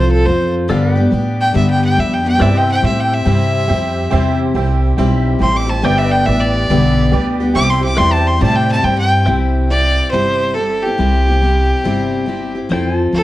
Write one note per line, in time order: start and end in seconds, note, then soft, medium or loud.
0.00 0.25 C2 medium
0.00 0.25 F3 medium
0.00 0.26 C4 medium
0.00 0.27 F4 medium
0.00 0.27 A4 medium
0.00 0.68 A4 medium
0.00 0.11 C5 medium
0.00 0.69 C5 medium
0.00 0.69 F5 medium
0.11 0.27 A4 medium
0.25 0.68 F2 medium
0.25 0.69 F3 medium
0.25 0.69 C4 medium
0.25 0.69 F4 medium
0.25 0.70 A4 medium
0.25 0.53 C5 medium
0.68 0.97 G2 medium
0.68 1.11 G2 medium
0.68 0.97 D3 medium
0.68 0.97 G3 medium
0.68 0.96 B3 medium
0.68 0.96 D4 medium
0.68 0.94 G4 medium
0.68 0.94 A4 medium
0.68 2.39 D5 medium
0.68 0.97 F5 medium
0.94 1.10 B3 medium
0.94 1.12 D4 medium
0.94 1.11 G4 medium
0.94 2.39 B4 medium
0.94 2.40 G5 medium
0.99 1.09 G3 soft
1.11 1.54 A2 medium
1.11 1.54 G3 medium
1.11 1.54 B3 medium
1.11 1.54 D4 medium
1.11 1.55 G4 medium
1.41 1.55 G5 medium
1.53 1.97 G2 medium
1.53 1.97 D3 medium
1.53 1.96 G3 medium
1.53 1.96 B3 medium
1.53 1.97 D4 loud
1.53 1.99 G4 medium
1.53 1.69 E5 medium
1.70 1.84 G5 medium
1.84 2.01 G5 medium
1.96 2.40 F2 medium
1.96 2.25 G3 medium
1.96 2.24 B3 medium
1.96 2.23 D4 medium
1.96 2.22 G4 medium
1.96 2.15 E5 medium
2.13 2.27 G5 medium
2.23 2.37 G3 soft
2.23 2.39 B3 soft
2.23 2.39 D4 soft
2.23 2.39 G4 soft
2.28 2.43 G5 medium
2.37 2.82 G2 medium
2.37 2.82 C3 medium
2.37 2.81 G3 medium
2.37 2.82 C4 medium
2.37 2.83 E4 medium
2.37 2.84 G4 medium
2.37 2.74 G4 medium
2.37 2.60 B4 medium
2.37 2.74 C5 medium
2.37 2.66 D5 medium
2.42 2.59 E5 medium
2.42 2.74 E5 loud
2.42 5.81 G5 medium
2.57 5.80 C5 medium
2.57 2.70 G5 medium
2.66 5.80 E5 medium
2.71 2.84 G5 loud
2.82 3.25 A2 loud
2.82 3.25 G3 medium
2.82 3.25 C4 medium
2.82 3.25 E4 medium
2.82 3.16 G4 medium
2.82 3.27 G4 medium
2.82 3.17 C5 medium
2.82 3.17 E5 medium
2.82 3.01 E5 medium
3.00 3.15 G5 medium
3.14 4.38 E5 medium
3.25 3.68 G2 medium
3.25 3.69 C3 medium
3.25 3.67 G3 medium
3.25 3.68 C4 medium
3.25 3.68 E4 medium
3.25 3.59 G4 medium
3.25 3.70 G4 medium
3.25 3.59 C5 medium
3.25 3.60 E5 medium
3.67 4.11 F2 medium
3.67 4.11 G3 medium
3.67 4.11 C4 medium
3.67 4.11 E4 medium
3.67 4.02 G4 medium
3.67 4.12 G4 medium
3.67 4.02 C5 medium
3.67 4.03 E5 medium
4.10 4.54 E2 medium
4.10 4.54 C3 medium
4.10 4.55 G3 medium
4.10 4.55 C4 loud
4.10 4.55 E4 loud
4.10 4.44 G4 loud
4.10 4.57 G4 medium
4.10 4.45 C5 loud
4.10 4.45 E5 loud
4.54 4.96 C2 medium
4.54 4.98 G3 medium
4.54 4.97 C4 medium
4.54 4.97 E4 medium
4.54 4.88 G4 medium
4.54 4.99 G4 medium
4.54 4.88 C5 medium
4.54 4.89 E5 medium
4.97 5.39 B1 medium
4.97 5.38 G3 medium
4.97 5.38 C4 medium
4.97 5.40 E4 medium
4.97 5.30 G4 medium
4.97 5.41 G4 loud
4.97 5.31 C5 medium
4.97 5.31 E5 medium
5.39 5.82 A1 medium
5.39 5.68 G3 medium
5.39 5.68 C4 medium
5.39 5.68 E4 medium
5.39 5.74 G4 medium
5.39 5.66 G4 medium
5.39 5.74 C5 medium
5.39 5.75 E5 medium
5.39 5.58 C6 medium
5.57 5.71 D6 medium
5.67 5.83 C4 soft
5.67 5.83 E4 soft
5.67 5.83 G4 medium
5.67 5.87 A5 medium
5.82 6.25 G1 medium
5.82 6.26 G2 medium
5.82 6.26 D3 medium
5.82 6.25 G3 medium
5.82 6.25 B3 medium
5.82 6.26 D4 medium
5.82 6.17 G4 loud
5.82 6.28 G4 medium
5.82 6.17 B4 medium
5.82 6.05 C5 medium
5.82 6.17 D5 loud
5.82 6.11 E5 medium
5.82 6.00 G5 medium
5.86 7.55 G5 medium
5.98 6.13 E5 medium
6.05 7.54 B4 medium
6.11 7.55 D5 medium
6.11 6.27 G5 medium
6.25 6.68 A1 loud
6.25 6.70 G3 medium
6.25 6.69 B3 medium
6.25 6.70 D4 medium
6.25 6.60 G4 medium
6.25 6.71 G4 medium
6.25 6.60 B4 medium
6.25 6.60 D5 medium
6.25 6.42 E5 medium
6.40 7.24 D5 medium
6.69 7.11 B1 medium
6.69 7.12 G2 medium
6.69 7.13 D3 medium
6.69 7.11 G3 medium
6.69 7.12 B3 medium
6.69 7.12 D4 loud
6.69 7.03 G4 medium
6.69 7.14 G4 medium
6.69 7.03 B4 medium
6.69 7.03 E5 medium
7.11 7.54 D2 medium
7.11 7.40 G3 medium
7.11 7.41 B3 medium
7.11 7.40 D4 medium
7.11 7.45 G4 medium
7.11 7.39 G4 medium
7.11 7.46 B4 medium
7.11 7.46 D5 loud
7.40 7.54 G3 soft
7.40 7.56 B3 soft
7.40 7.55 D4 medium
7.40 7.55 G4 medium
7.54 7.97 C2 medium
7.54 7.83 C3 medium
7.54 7.83 G3 medium
7.54 7.83 C4 medium
7.54 7.82 E4 medium
7.54 7.88 G4 loud
7.54 7.80 G4 loud
7.54 7.88 C5 medium
7.54 7.89 E5 loud
7.54 7.71 D6 loud
7.70 7.83 C6 medium
7.81 7.97 C4 soft
7.81 7.97 E4 soft
7.81 7.97 G4 medium
7.81 7.99 D6 medium
7.97 8.40 E2 medium
7.97 8.38 G3 medium
7.97 8.39 C4 medium
7.97 8.39 E4 medium
7.97 8.31 G4 medium
7.97 8.40 G4 medium
7.97 8.17 B4 medium
7.97 8.32 C5 medium
7.97 8.32 D5 medium
7.97 9.25 E5 medium
7.97 9.26 G5 medium
7.97 8.14 C6 loud
8.12 8.29 A5 medium
8.17 9.25 C5 medium
8.27 8.41 C6 medium
8.39 8.83 A2 medium
8.39 8.83 C3 medium
8.39 8.81 G3 medium
8.39 8.83 C4 loud
8.39 8.84 E4 medium
8.39 8.74 G4 medium
8.39 8.84 G4 medium
8.39 8.75 C5 medium
8.39 8.75 D5 medium
8.39 8.57 A5 loud
8.56 8.69 G5 loud
8.72 8.85 A5 medium
8.83 9.26 G2 loud
8.83 9.25 G3 medium
8.83 9.26 C4 medium
8.83 9.26 E4 medium
8.83 9.17 G4 medium
8.83 9.27 G4 medium
8.83 9.18 C5 medium
8.83 8.97 G5 medium
8.83 9.18 G5 medium
8.98 9.26 G5 loud
9.26 9.99 C2 medium
9.26 9.70 C3 medium
9.26 9.68 G3 medium
9.26 9.70 C4 medium
9.26 9.70 E4 medium
9.26 9.71 G4 medium
9.26 12.67 C5 medium
9.26 12.68 E5 medium
9.26 12.69 G5 medium
9.69 10.12 G3 medium
9.69 10.13 C4 soft
9.69 10.13 E4 medium
9.69 10.13 G4 medium
9.69 10.10 D5 loud
10.11 10.85 G1 medium
10.11 10.56 C3 medium
10.11 10.54 G3 medium
10.11 10.56 C4 medium
10.11 10.56 E4 medium
10.11 10.57 G4 medium
10.11 10.56 C5 loud
10.54 10.84 G3 medium
10.54 10.84 C4 medium
10.54 10.84 E4 medium
10.54 10.82 G4 medium
10.54 10.84 A4 medium
10.83 10.98 E4 soft
10.83 12.56 G4 medium
10.83 10.99 G4 soft
10.87 10.97 C4 soft
10.98 11.71 C2 medium
10.98 11.27 C3 medium
10.98 11.27 G3 medium
10.98 11.27 C4 medium
10.98 11.26 E4 medium
10.98 11.25 G4 medium
11.26 11.41 C4 soft
11.26 11.42 E4 soft
11.26 11.42 G4 medium
11.42 11.84 G3 medium
11.42 11.85 C4 medium
11.42 11.84 E4 medium
11.42 11.85 G4 medium
11.84 12.58 G1 medium
11.84 12.28 C3 medium
11.84 12.25 G3 medium
11.84 12.26 C4 medium
11.84 12.27 E4 medium
11.84 12.28 G4 medium
12.26 12.55 G3 medium
12.26 12.56 C4 medium
12.26 12.55 E4 medium
12.26 12.54 G4 medium
12.55 12.68 C4 soft
12.55 12.70 E4 soft
12.55 12.70 G4 medium
12.69 13.07 F2 medium
12.69 13.11 F3 medium
12.69 13.13 C4 medium
12.69 12.93 E4 medium
12.69 13.14 F4 medium
12.69 13.14 A4 medium
12.69 13.23 C5 medium
12.73 12.98 G5 medium
12.93 13.23 F4 medium
12.98 13.23 A5 medium
13.13 13.23 D2 medium
13.13 13.23 F3 medium
13.13 13.23 C4 medium
13.13 13.23 F4 medium
13.13 13.23 A4 medium